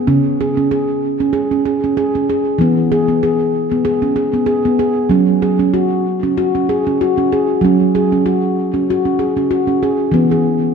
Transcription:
handpan
0.07 C#3 C#4
0.41 G#4
0.57 C#4
0.71 G#4
1.20 C#4
1.33 G#4
1.51 C#4
1.65 G#4
1.84 C#4
1.97 G#4
2.15 C#4
2.30 G#4
2.58 E3 B3
2.92 G#4
3.08 B3
3.23 G#4
3.72 B3
3.85 G#4
4.02 C#4
4.16 G#4
4.34 B3
4.46 G#4
4.65 B3
4.79 G#4
5.09 F#3 C#4
5.42 G#4
5.59 C#4
5.74 F#4
6.23 C#4
6.38 F#4
6.55 C#4
6.69 G#4
6.87 C#4
7.01 F#4
7.18 C#4
7.32 G#4
7.61 F#3 C#4
7.95 G#4
8.12 C#4
8.26 F#4
8.74 C#4
8.90 F#4
9.05 C#4
9.19 G#4
9.37 C#4
9.51 F#4
9.67 C#4
9.83 G#4
10.12 E3 B3
10.31 G#4

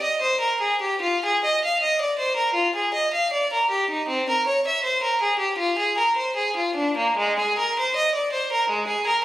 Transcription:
violin
0.03 D#5
0.22 C5
0.40 A#4
0.61 G#4
0.81 G4
1.02 F4
1.25 G#4
1.44 D#5
1.65 F5
1.82 D#5
2.01 D5
2.19 C5
2.36 A#4
2.54 F4
2.75 G#4
2.94 D#5
3.13 F5
3.33 D5
3.53 A#4
3.70 G4
3.90 D#4
4.08 C4
4.29 A#4
4.47 C#5
4.67 E5
4.84 C5
5.03 A#4
5.22 G#4
5.39 G4
5.58 F4
5.78 G#4
5.98 A#4
6.16 C5
6.36 G#4
6.57 F4
6.76 D4
6.97 A#3
7.17 G#3
7.39 G#4
7.59 A#4
7.79 C5
7.96 D#5
8.15 D5
8.33 C5
8.52 A#4
8.70 G#3
8.88 G#4
9.07 A#4

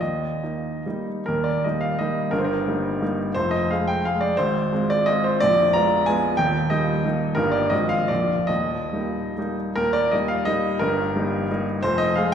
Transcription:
grand piano
0.01 D#2 D#5
0.43 A#3 D#4
0.86 G3 A#3 D#4
1.26 D#1 D#2 A#4
1.44 D5
1.64 G3 A#3 D#4 D#5
1.81 F5
1.99 G3 A#3 D#4 D#5
2.31 G1 G2 A#4
2.38 C5
2.44 A#4
2.68 G3 A#3 D#4
3.02 G3 A#3 D#4
3.34 F1 F2 C5
3.51 D#5
3.70 G#3 G#4 F5
3.88 G5
4.05 G#3 G#4 F5
4.21 D5
4.37 G#1 G#2 C5
4.73 G#3 C4 F4
4.90 D5
5.06 G#3 C4 F4 D#5
5.24 C5
5.40 A#0 A#1 D5
5.73 G#3 B3 F4 A#5
6.06 G#3 B3 F4 G#5
6.37 D#1 D#2 G5
6.70 G3 A#3 D#4 D#5
7.04 G3 A#3 D#4
7.35 G1 G2 G3 A#3 D#4 A#4
7.52 D5
7.70 G#1 G#2 F3 C4 F4 D#5
7.89 F5
8.08 A#0 A#1 F3 A#3 F4 D5
8.47 D#1 D#2 D#5
8.93 G3 A#3 D#4
9.38 G3 A#3 D#4
9.76 D#1 D#2 A#4
9.93 D5
10.11 G3 A#3 D#4 D#5
10.28 F5
10.45 G3 A#3 D#4 D#5
10.79 G1 G2 A#4
11.16 G3 A#3 D#4
11.51 G3 A#3 D#4
11.83 F1 F2 C5
11.98 D#5
12.15 G#3 F4 G#4 F5

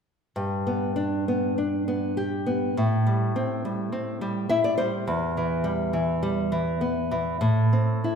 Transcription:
nylon-string guitar
0.36 G2
0.67 B3
0.96 D4
1.28 B3
1.58 D4
1.88 B3
2.17 G4
2.46 B3
2.77 A2
3.07 G3
3.36 C4
3.65 G3
3.92 C4
4.21 G3
4.49 E4 E5
4.64 D5
4.78 G3 C5
5.08 E2
5.37 E3
5.64 G3
5.93 E3
6.23 G3
6.52 E3
6.81 B3
7.11 E3
7.41 A2
7.73 C4
8.04 E4

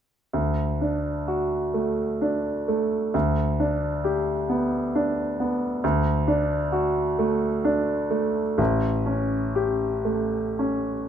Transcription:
grand piano
0.33 D2
0.81 D4
1.28 F#4
1.74 A3
2.21 D4
2.68 A3
3.14 D2
3.60 D4
4.04 G4
4.49 B3
4.95 D4
5.40 B3
5.84 D2
6.28 D4
6.72 F#4
7.19 A3
7.65 D4
8.10 A3
8.58 A1
9.06 C#4
9.55 G4
10.05 A3
10.59 C#4

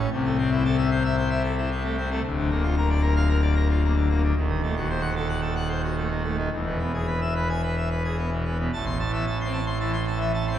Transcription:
pipe organ
0.11 C2 C3
0.25 A3
0.38 C4
0.51 E4
0.65 A4
0.78 E5
0.91 C5
1.04 E5
1.17 C5
1.31 E5
1.44 A4
1.58 E4
1.71 C4
1.84 A3
1.98 C4
2.11 A3
2.23 D1 D2
2.38 D3
2.51 A#3
2.63 F4
2.77 A#4
2.89 D5
3.02 A#4
3.16 F5
3.29 A#4
3.42 D5
3.55 A#4
3.70 F4
3.83 A#3
3.96 D3
4.10 A#3
4.23 D3
4.36 D#1 D#2
4.49 D#3
4.62 A3
4.76 F#4
4.90 C5
5.01 F#5
5.16 A4
5.29 F#5
5.41 A4
5.55 F#5
5.69 C5
5.82 F#4
5.97 A3
6.10 D#3
6.23 A3
6.37 D#3
6.51 E1 E2
6.66 B2
6.79 B3
6.94 G#4
7.07 B4
7.21 E5
7.35 B4
7.49 G#5
7.63 B4
7.76 E5
7.90 B4
8.04 G#4
8.17 B3
8.32 B2
8.45 B3
8.59 B2
8.73 A1 A2 A5
8.86 C6
9.00 A5
9.09 E3
9.14 E5
9.27 A5
9.41 C4 C6
9.53 A5
9.66 C6
9.80 E3 A5
9.93 C6
10.07 A5
10.15 E3
10.21 E5
10.34 A5
10.47 C6
10.51 C4

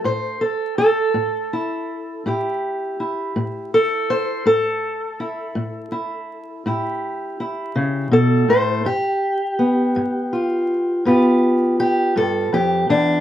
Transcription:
steel-string acoustic guitar
Already playing: A3
0.04 A2 C5
0.41 A4
0.78 A4
1.14 A2
1.53 E4
2.26 A2 E4 G4
3.00 E4
3.36 A2
3.74 A4
4.10 C5
4.46 A2 A4
5.20 E4
5.55 A2
5.92 E4
6.66 A2 E4 G4
7.40 E4
7.76 C#3
8.12 B2 A4
8.48 A2 C5
8.85 G2 G4
9.59 B3
9.96 G2
10.33 F4
11.05 G2 B3 F4 G4
11.80 G4
12.16 G2 A4
12.53 F2 G4
12.89 E2 D4

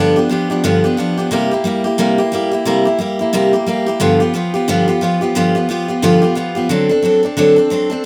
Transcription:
steel-string acoustic guitar
Already playing: G2 D3 F3
0.00 B3 D4 G4
0.16 F3 B3 D4 G4
0.29 F3 B3 D4 G4
0.50 F3 B3 D4 G4
0.64 G2 D3 F3 B3 D4 G4
0.84 F3 B3 D4 G4
0.97 F3 B3 D4 G4
1.18 F3 B3 D4 G4
1.31 C3 G3 A#3 E4 G4
1.51 A#3 E4 G4
1.64 G3 A#3 E4 G4
1.84 A#3 E4 G4
1.98 C3 G3 A#3 E4 G4
2.18 A#3 E4 G4
2.32 G3 A#3 E4 G4
2.51 A#3 E4 G4
2.65 C3 G3 A#3 E4 G4
2.85 A#3 E4 G4
2.99 G3 A#3 E4 G4
3.19 A#3 E4 G4
3.33 C3 G3 A#3 E4 G4
3.53 A#3 E4 G4
3.66 G3 A#3 E4 G4
3.86 A#3 E4 G4
4.00 G2 D3 F3 B3 F4 G4
4.20 F3 B3 F4 G4
4.34 F3 B3 F4 G4
4.54 F3 B3 F4 G4
4.68 G2 D3 F3 B3 F4 G4
4.88 F3 B3 F4 G4
5.01 F3 B3 F4 G4
5.21 F3 B3 F4 G4
5.35 G2 D3 F3 B3 F4 G4
5.55 F3 B3 F4 G4
5.69 F3 B3 F4 G4
5.88 F3 B3 F4 G4
6.02 G2 D3 F3 B3 F4 G4
6.22 F3 B3 F4 G4
6.35 F3 B3 F4 G4
6.55 F3 B3 F4 G4
6.69 D3 F#3 C4 D4 A4
6.89 C4 D4 A4
7.03 F#3 C4 D4 A4
7.23 C4 D4 A4
7.37 D3 F#3 C4 D4 A4
7.56 C4 D4 A4
7.70 F#3 C4 D4 A4
7.90 C4 D4 A4

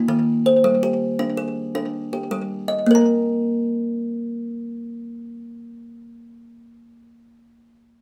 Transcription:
kalimba
Already playing: D#4
0.08 D#3
0.46 C5
0.64 G3
0.83 G4
1.19 D4
1.37 G#4
1.75 D4
2.13 G4
2.31 G3
2.68 D#5
2.86 A#3
2.91 A#4
2.95 A#5

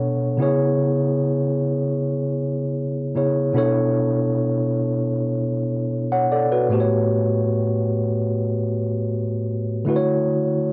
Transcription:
tine electric piano
Already playing: B2 B3 D4 A4 C#5
0.38 C#3 B3 E4 G#4
0.42 C#5
3.15 C#3 B3 E4 G#4 C#5
3.53 B2 B3 D4 E4 A4
3.58 C#5
6.12 C#5 F#5
6.32 A4 D5
6.52 F#4 B4
6.69 A2 A3 B3 F#4 G4
6.74 C5
6.80 C#5
9.85 D3 A3 E4 F#4
9.90 B4
9.96 C#5

